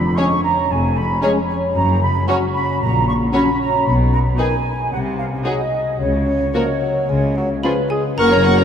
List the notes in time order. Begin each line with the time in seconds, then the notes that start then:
Already playing: F2 F3 B5
0.17 G#3 C#4 G#4 C#5 C#6
0.44 C#5 A#5
0.70 F1 F2 G#5
0.96 F3 B5
1.22 G#3 C#4 G#4 C#5 A#5
1.49 C#5 G#5
1.75 F#1 F#2 A#5
2.01 C#3 B5
2.28 F#3 C#4 F#4 C#5 C#6
2.54 C#5 B5
2.80 A#1 A#2 A#5
3.07 A#3 C#6
3.33 F#3 C#4 F#4 C#5 B5
3.60 C#5 A#5
3.86 B1 B2 B5
4.13 B3 A#5
4.38 D#3 D#4 G#4 B4 G#5
4.64 D#5
4.91 C2 C3 F#5
5.17 C4 F5
5.45 F#3 G#3 D#4 F#4 G#4 D#5
5.71 D#5
5.99 C#2 C#3 C#5
6.27 C#4
6.54 F3 A#3 F#4 A#4
6.81 F#3 A#4
7.09 C#2 C#3 G#3
7.37 F#3 C#4
7.63 F3 G#3 C#4 F4 G#4 B4 B5
7.90 G#3 G#4 G#5
8.18 F#1 F#2 F#3 A#3 C#4 A#4 F#5 A#5 C#6
8.31 C#4 C#5 A#5
8.36 C#3
8.44 A#3 F#5 C#6
8.53 F#4 A#5
8.58 C#4 C#5